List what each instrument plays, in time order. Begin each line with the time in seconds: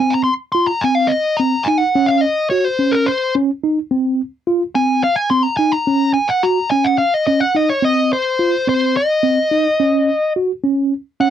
Already playing: lead electric guitar G#5
0.00 tine electric piano C4
0.10 lead electric guitar A#5
0.24 lead electric guitar C6
0.52 tine electric piano F4, lead electric guitar C6
0.67 lead electric guitar A#5
0.81 tine electric piano C4, lead electric guitar G#5
0.95 lead electric guitar F5
1.08 lead electric guitar D#5
1.37 tine electric piano C4, lead electric guitar A#5
1.64 tine electric piano D#4, lead electric guitar G#5
1.78 lead electric guitar F#5
1.95 tine electric piano C#4
2.06 lead electric guitar F5
2.21 lead electric guitar D#5
2.50 tine electric piano F#4, lead electric guitar C#5
2.65 lead electric guitar C5
2.79 tine electric piano C#4
2.92 lead electric guitar A#4
3.06 lead electric guitar C5
3.35 tine electric piano C#4
3.63 tine electric piano D#4
3.91 tine electric piano C4
4.47 tine electric piano F4
4.75 tine electric piano C4, lead electric guitar G#5
5.04 lead electric guitar F5
5.16 lead electric guitar G#5
5.30 tine electric piano C4, lead electric guitar C6
5.43 lead electric guitar A#5
5.57 tine electric piano D#4, lead electric guitar G#5
5.72 lead electric guitar A#5
5.87 tine electric piano C#4
6.14 lead electric guitar G#5
6.29 lead electric guitar F#5
6.43 tine electric piano F#4, lead electric guitar A#5
6.71 tine electric piano C#4, lead electric guitar G#5
6.84 lead electric guitar F#5
6.98 lead electric guitar F5
7.14 lead electric guitar D#5
7.27 tine electric piano C#4, lead electric guitar D#5
7.40 lead electric guitar F#5
7.55 tine electric piano D#4, lead electric guitar D#5
7.70 lead electric guitar C#5
7.82 tine electric piano C4, lead electric guitar D#5
8.13 lead electric guitar C5
8.39 tine electric piano F4
8.67 tine electric piano C4, lead electric guitar C5
8.97 lead electric guitar D#5
9.23 tine electric piano C4
9.51 tine electric piano D#4
9.80 tine electric piano C#4
10.36 tine electric piano F#4
10.64 tine electric piano C#4
11.20 tine electric piano C#4, lead electric guitar F#5